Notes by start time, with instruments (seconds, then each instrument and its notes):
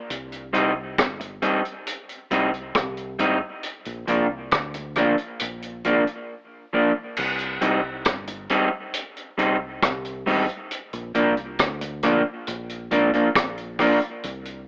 0.10 fingered electric bass C2, closed hi-hat
0.32 closed hi-hat
0.53 fingered electric bass C2, clean electric guitar G3 C4 D#4, closed hi-hat
0.98 fingered electric bass G1, kick, cross-stick, closed hi-hat
1.20 muted clean electric guitar stroke, closed hi-hat
1.42 clean electric guitar G3 C4 D#4, closed hi-hat
1.65 closed hi-hat
1.87 closed hi-hat
2.09 closed hi-hat
2.31 fingered electric bass C2, clean electric guitar G3 C4 D#4, closed hi-hat
2.54 closed hi-hat
2.75 fingered electric bass C2, kick, cross-stick, closed hi-hat
2.97 closed hi-hat
3.19 fingered electric bass G#1, clean electric guitar G3 C4 D#4, closed hi-hat
3.63 closed hi-hat
3.85 fingered electric bass A#1, closed hi-hat
4.07 fingered electric bass C2, clean electric guitar F3 A#3 D4, closed hi-hat
4.51 fingered electric bass D2, kick, cross-stick, closed hi-hat
4.74 muted clean electric guitar stroke, closed hi-hat
4.95 clean electric guitar F3 A#3 D4, cross-stick, closed hi-hat
5.18 closed hi-hat
5.39 fingered electric bass A#1, closed hi-hat
5.62 closed hi-hat
5.84 fingered electric bass G#1, clean electric guitar F3 A#3 D4, closed hi-hat
6.07 closed hi-hat
6.73 clean electric guitar F3 A#3 D4
7.17 fingered electric bass C2, crash
7.39 closed hi-hat
7.61 fingered electric bass C2, clean electric guitar G3 C4 D#4, closed hi-hat
8.05 fingered electric bass G1, kick, cross-stick, closed hi-hat
8.27 muted clean electric guitar stroke, closed hi-hat
8.49 clean electric guitar G3 C4 D#4, closed hi-hat
8.94 closed hi-hat
9.17 closed hi-hat
9.38 fingered electric bass C2, clean electric guitar G3 C4 D#4, closed hi-hat
9.82 fingered electric bass C2, kick, cross-stick, closed hi-hat
10.05 closed hi-hat
10.26 fingered electric bass G#1, clean electric guitar G3 C4 D#4, open hi-hat
10.49 closed hi-hat
10.71 closed hi-hat
10.93 fingered electric bass A#1, closed hi-hat
11.15 fingered electric bass C2, clean electric guitar F3 A#3 D4, closed hi-hat
11.37 closed hi-hat
11.59 fingered electric bass D2, kick, cross-stick, closed hi-hat
11.81 muted clean electric guitar stroke, closed hi-hat
12.03 clean electric guitar F3 A#3 D4, cross-stick, closed hi-hat
12.47 fingered electric bass A#1, closed hi-hat
12.69 closed hi-hat
12.91 fingered electric bass G#1, clean electric guitar F3 A#3 D4, closed hi-hat
13.13 clean electric guitar F3 A#3 D4, closed hi-hat
13.35 fingered electric bass A#1, kick, cross-stick, closed hi-hat
13.58 closed hi-hat
13.79 clean electric guitar F3 A#3 D4, kick, cross-stick, open hi-hat
14.02 closed hi-hat
14.23 fingered electric bass C2, closed hi-hat
14.45 closed hi-hat